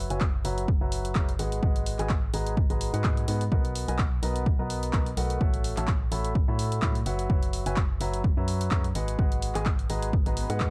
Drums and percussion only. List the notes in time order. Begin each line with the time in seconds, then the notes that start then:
0.10 closed hi-hat
0.21 kick, clap
0.45 open hi-hat
0.58 closed hi-hat
0.68 kick
0.92 open hi-hat
1.05 closed hi-hat
1.15 kick, clap
1.29 closed hi-hat
1.39 open hi-hat
1.52 closed hi-hat
1.63 kick
1.76 closed hi-hat
1.86 open hi-hat
1.99 clap, closed hi-hat
2.09 kick, clap
2.34 open hi-hat
2.47 closed hi-hat
2.57 kick
2.70 closed hi-hat
2.81 open hi-hat
2.94 closed hi-hat
3.04 kick, clap
3.17 closed hi-hat
3.28 open hi-hat
3.41 closed hi-hat
3.52 kick
3.65 closed hi-hat
3.75 open hi-hat
3.88 closed hi-hat
3.98 kick, clap
4.23 open hi-hat
4.36 closed hi-hat
4.46 kick
4.70 open hi-hat
4.83 closed hi-hat
4.93 kick, clap
5.06 closed hi-hat
5.17 open hi-hat
5.30 closed hi-hat
5.41 kick
5.54 closed hi-hat
5.64 open hi-hat
5.77 clap, closed hi-hat
5.88 kick, clap
6.12 open hi-hat
6.25 closed hi-hat
6.35 kick
6.59 open hi-hat
6.72 closed hi-hat
6.82 kick, clap
6.95 closed hi-hat
7.06 open hi-hat
7.19 closed hi-hat
7.30 kick
7.43 closed hi-hat
7.53 open hi-hat
7.66 closed hi-hat
7.76 kick, clap
8.01 open hi-hat
8.14 closed hi-hat
8.24 kick
8.48 open hi-hat
8.61 closed hi-hat
8.71 kick, clap
8.84 closed hi-hat
8.95 open hi-hat
9.08 closed hi-hat
9.19 kick
9.32 closed hi-hat
9.42 open hi-hat
9.55 clap, closed hi-hat
9.66 kick, clap
9.79 closed hi-hat
9.90 open hi-hat
10.02 closed hi-hat
10.13 kick
10.26 closed hi-hat
10.37 open hi-hat
10.50 closed hi-hat
10.60 kick, clap